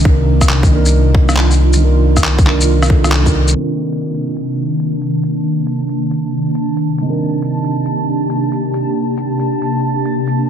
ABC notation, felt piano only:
X:1
M:4/4
L:1/16
Q:"Swing 16ths" 1/4=137
K:Cdor
V:1 name="Felt piano"
[E,DB]6 [E,DB]8- [E,DB]2 | [E,DB]6 [E,DB]4 [E,DA]3 [E,DB]3 | [E,CDB]16- | [E,CDB]16 |
[E,CDB]16- | [E,CDB]16 |]